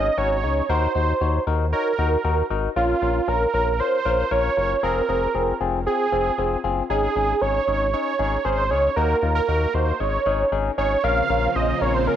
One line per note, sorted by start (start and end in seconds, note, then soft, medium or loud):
0.00 0.10 C#4 medium
0.00 0.10 G#4 loud
0.00 0.19 D#5 loud
0.18 0.45 G#1 loud
0.18 0.36 C#4 medium
0.18 0.36 D#4 medium
0.18 0.36 F#4 loud
0.18 0.69 C#5 loud
0.43 0.62 C#2 medium
0.43 0.62 C#4 medium
0.43 0.62 D#4 medium
0.43 0.62 G#4 medium
0.69 0.87 D#2 loud
0.69 0.88 D#4 medium
0.69 0.88 F#4 medium
0.69 0.88 A#4 loud
0.69 1.43 C5 loud
0.95 1.13 D#2 medium
0.95 1.13 D#4 medium
0.95 1.13 F#4 medium
0.95 1.13 C5 medium
1.21 1.39 D#2 medium
1.21 1.39 D#4 medium
1.21 1.39 F#4 medium
1.21 1.39 C#5 medium
1.47 1.74 D#2 loud
1.47 1.65 D#4 medium
1.47 1.65 F#4 medium
1.47 1.65 A#4 medium
1.72 1.91 D#4 medium
1.72 1.91 F#4 medium
1.72 2.46 A#4 loud
1.72 1.91 C#5 medium
1.99 2.17 D#2 loud
1.99 2.17 D#4 medium
1.99 2.17 F#4 medium
1.99 2.17 A#4 loud
2.24 2.43 D#2 loud
2.24 2.43 D#4 medium
2.24 2.43 F#4 medium
2.24 2.43 A#4 loud
2.50 2.68 G#1 medium
2.50 2.69 D#4 medium
2.50 2.69 F#4 medium
2.50 2.69 A#4 medium
2.76 2.94 A#1 loud
2.76 2.94 C#4 medium
2.76 2.94 F4 medium
2.76 3.30 F4 medium
2.76 2.94 A#4 loud
3.02 3.20 A#1 loud
3.02 3.20 C#4 medium
3.02 3.20 F4 medium
3.02 3.20 A#4 medium
3.28 3.46 A#1 loud
3.28 3.46 C#4 medium
3.28 3.46 F4 medium
3.28 3.46 A#4 medium
3.28 3.81 A#4 loud
3.54 3.81 A#1 loud
3.54 3.72 C#4 medium
3.54 3.72 F4 medium
3.54 3.72 A#4 medium
3.80 3.98 C#4 medium
3.80 3.98 F4 medium
3.80 3.98 A#4 medium
3.80 4.33 C5 loud
4.05 4.24 A#1 loud
4.05 4.24 C#4 medium
4.05 4.24 F4 medium
4.05 4.24 A#4 loud
4.31 4.49 A#1 loud
4.31 4.50 C#4 medium
4.31 4.50 F4 medium
4.31 4.50 A#4 loud
4.31 4.83 C#5 loud
4.57 4.75 F#1 loud
4.57 4.75 C#4 medium
4.57 4.75 F4 medium
4.57 4.75 A#4 medium
4.83 5.01 F1 loud
4.83 5.01 C4 medium
4.83 5.01 F4 medium
4.83 5.01 G#4 loud
4.83 5.57 A#4 loud
5.09 5.27 F1 medium
5.09 5.27 C4 medium
5.09 5.27 F4 medium
5.09 5.27 G#4 medium
5.35 5.53 F1 loud
5.35 5.53 C4 medium
5.35 5.53 F4 medium
5.35 5.53 G#4 medium
5.61 5.88 F1 loud
5.61 5.79 C4 medium
5.61 5.79 F4 medium
5.61 5.79 G#4 medium
5.87 6.05 C4 medium
5.87 6.05 F4 medium
5.87 6.60 G#4 loud
5.87 6.05 G#4 medium
6.12 6.30 F1 loud
6.12 6.31 C4 medium
6.12 6.31 F4 medium
6.12 6.31 G#4 loud
6.38 6.56 F1 loud
6.38 6.57 C4 medium
6.38 6.57 F4 medium
6.38 6.57 G#4 loud
6.64 6.82 F#1 medium
6.64 6.82 C4 medium
6.64 6.82 F4 medium
6.64 6.82 G#4 loud
6.90 7.08 G#1 loud
6.90 7.08 C#4 medium
6.90 7.08 D#4 medium
6.90 7.43 G#4 loud
6.90 7.08 G#4 loud
7.16 7.34 G#1 medium
7.16 7.34 C#4 medium
7.16 7.34 D#4 medium
7.16 7.34 G#4 medium
7.41 7.60 G#1 medium
7.41 7.60 C#4 medium
7.41 7.60 D#4 medium
7.41 7.60 G#4 medium
7.41 7.92 C#5 loud
7.68 7.95 G#1 loud
7.68 7.86 C#4 medium
7.68 7.86 D#4 medium
7.68 7.86 G#4 medium
7.93 8.12 C#4 medium
7.93 8.12 D#4 medium
7.93 8.12 G#4 medium
7.93 8.46 C#5 loud
8.19 8.37 G#1 loud
8.19 8.37 C#4 medium
8.19 8.37 D#4 medium
8.19 8.37 G#4 loud
8.45 8.72 G#1 loud
8.45 8.63 C#4 medium
8.45 8.63 D#4 medium
8.45 8.63 G#4 loud
8.45 8.72 C5 loud
8.70 8.89 C#2 medium
8.70 8.89 C#4 medium
8.70 8.89 D#4 medium
8.70 8.89 G#4 medium
8.70 8.96 C#5 loud
8.96 9.15 D#2 loud
8.96 9.15 A#3 loud
8.96 9.15 D#4 medium
8.96 9.15 F#4 loud
8.96 9.33 A#4 loud
9.23 9.41 D#2 medium
9.23 9.41 A#3 medium
9.23 9.41 D#4 medium
9.23 9.41 F4 medium
9.35 9.76 A#4 loud
9.48 9.67 D#2 medium
9.48 9.67 A#3 medium
9.48 9.67 D#4 medium
9.48 9.67 F#4 medium
9.74 9.92 D#2 loud
9.74 9.93 A#3 medium
9.74 9.93 D#4 medium
9.74 9.93 F#4 medium
9.74 10.01 C5 medium
10.00 10.18 G#1 loud
10.00 10.19 C#4 medium
10.00 10.19 D#4 medium
10.00 10.19 G#4 medium
10.00 10.52 C#5 medium
10.26 10.44 G#1 medium
10.26 10.44 C#4 medium
10.26 10.44 D#4 medium
10.26 10.44 G#4 loud
10.52 10.70 G#1 loud
10.52 10.70 C#4 medium
10.52 10.70 D#4 medium
10.52 10.70 G#4 loud
10.78 10.96 G#1 medium
10.78 10.96 C#4 medium
10.78 10.96 D#4 medium
10.78 10.96 G#4 medium
10.78 11.05 C#5 loud
11.04 11.22 A#1 loud
11.04 12.16 C#3 medium
11.04 12.16 F3 medium
11.04 12.16 A#3 medium
11.04 12.16 C4 medium
11.04 11.22 C#4 loud
11.04 11.22 F4 medium
11.04 12.16 F4 medium
11.04 11.22 A#4 loud
11.04 11.57 F5 loud
11.30 11.48 A#1 loud
11.30 11.48 C#4 medium
11.30 11.48 F4 medium
11.30 11.48 A#4 medium
11.55 11.74 A#1 loud
11.55 11.74 C#4 medium
11.55 11.74 F4 medium
11.55 11.74 C5 medium
11.55 11.83 D#5 loud
11.81 12.08 A#1 loud
11.81 12.00 C#4 medium
11.81 12.00 F4 medium
11.81 12.00 A#4 medium
11.81 11.96 C#5 loud
11.94 12.07 C5 medium
12.07 12.16 C#4 medium
12.07 12.16 F4 medium
12.07 12.16 A#4 loud
12.07 12.16 A#4 medium